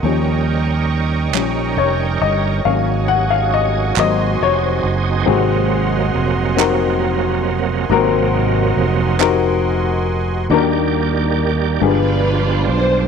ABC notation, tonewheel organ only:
X:1
M:6/8
L:1/8
Q:3/8=46
K:Abmix
V:1 name="Tonewheel organ"
[=G,DE=AB]6 | [G,DEA]3 [G,CEA]3 | [C,G,B,]6 | [C,G,B,]3 z3 |
[K:Eb] [E,G,B,Gd]3 [=B,,F,G,A,D]3 |]